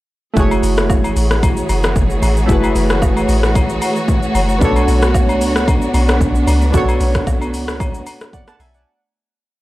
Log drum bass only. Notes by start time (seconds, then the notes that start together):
0.37 F#1
0.63 F#1
1.16 A1
1.69 F#1
1.96 F#1
2.23 A1
2.49 F#1
2.76 F#1
3.29 A1
4.35 F#1
4.61 B1
4.88 B1
5.41 C#2
5.94 B1
6.21 B1
6.47 C#2
6.74 B1
7.00 B1
7.54 C#2
8.60 B1